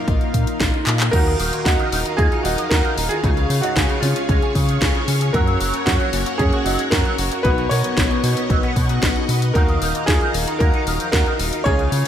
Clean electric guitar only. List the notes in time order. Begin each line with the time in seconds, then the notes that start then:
1.13 D#3
1.26 D#3
1.40 D#3
1.53 A#2
1.66 D#4
1.79 D#3
1.92 D#3
2.05 D#4
2.18 A#3
2.32 D#4
2.45 D#3
2.58 F3
2.71 D#4
2.84 D#3
2.98 D#4
3.11 D#4
3.24 C#3
3.37 C#3
3.50 C#3
3.63 G#2
3.76 C#4
3.90 C#3
4.03 C#3
4.16 C#4
4.29 G#3
4.42 C#4
4.55 C#3
4.68 D#3
4.81 C#4
4.95 C#3
5.08 C#4
5.21 C#4
5.34 F#3
5.47 F#3
5.61 F#3
5.74 C#3
5.87 F#4
6.00 F#3
6.13 F#2
6.26 F#4
6.39 C#4
6.53 F#4
6.66 F#3
6.79 G#3
6.92 F#4
7.05 F#3
7.18 F#4
7.32 F#4
7.45 B2
7.58 B2
7.71 B2
7.84 F#2
7.97 B3
8.11 B2
8.24 B2
8.37 B3
8.50 F#3
8.63 B3
8.76 B2
8.89 C#3
9.03 B3
9.16 B2
9.29 B3
9.42 B3
9.55 D#3
9.68 D#3
9.82 D#3
9.95 A#2
10.08 D#4
10.21 D#3
10.34 D#3
10.47 D#4
10.61 A#3
10.74 D#4
10.87 D#3
11.00 F3
11.13 D#4
11.26 D#3
11.39 D#4
11.53 D#4
11.66 C#3
11.79 C#3
11.92 C#3